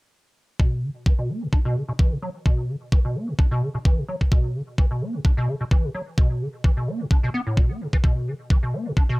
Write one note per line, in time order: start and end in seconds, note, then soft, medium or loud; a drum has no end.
0.60 0.84 B2 medium
0.60 kick loud
0.83 0.90 D3 medium
1.06 1.13 E3 medium
1.06 kick loud
1.19 1.31 B2 medium
1.29 1.43 B3 medium
1.42 1.48 A2 loud
1.53 1.60 D4 medium
1.53 kick loud
1.65 1.77 B2 medium
1.76 1.83 D3 medium
1.88 1.92 B2 medium
1.99 2.13 E3 medium
1.99 kick loud
2.12 2.18 B2 medium
2.22 2.29 F#3 medium
2.46 2.70 B2 medium
2.46 kick loud
2.69 2.76 D3 medium
2.92 2.99 E3 medium
2.92 kick loud
3.05 3.17 B2 medium
3.15 3.29 B3 medium
3.28 3.34 A2 loud
3.39 3.46 D4 medium
3.39 kick loud
3.51 3.63 B2 loud
3.62 3.69 D3 medium
3.75 3.78 B2 medium
3.85 3.99 E3 medium
3.85 kick loud
3.98 4.04 B2 medium
4.08 4.15 F#3 medium
4.21 kick medium
4.32 4.56 B2 medium
4.32 kick loud
4.55 4.62 D3 medium
4.78 4.85 E3 medium
4.78 kick loud
4.91 5.03 B2 medium
5.01 5.16 B3 medium
5.14 5.20 A2 loud
5.25 5.32 D4 medium
5.25 kick loud
5.37 5.49 B2 loud
5.48 5.55 D3 medium
5.61 5.64 B2 medium
5.71 5.85 E3 medium
5.71 kick loud
5.84 5.90 B2 medium
5.94 6.01 F#3 medium
6.18 6.43 B2 medium
6.18 kick loud
6.41 6.48 D3 medium
6.64 6.71 E3 medium
6.64 kick loud
6.77 6.89 B2 medium
6.88 7.02 B3 medium
7.00 7.06 A2 loud
7.11 7.18 D4 medium
7.11 kick loud
7.23 7.29 B2 loud
7.34 7.41 B3 loud
7.47 7.59 A2 medium
7.57 7.71 B2 medium
7.57 kick loud
7.70 7.82 B3 medium
7.81 7.87 B2 loud
7.93 7.97 E3 loud
7.93 kick medium
8.04 8.29 B2 medium
8.04 kick loud
8.27 8.34 D3 medium
8.50 8.57 E3 medium
8.50 kick loud
8.63 8.75 B2 medium
8.74 8.88 B3 medium
8.86 8.92 A2 loud
8.97 9.04 D4 medium
8.97 kick loud
9.09 9.20 B2 loud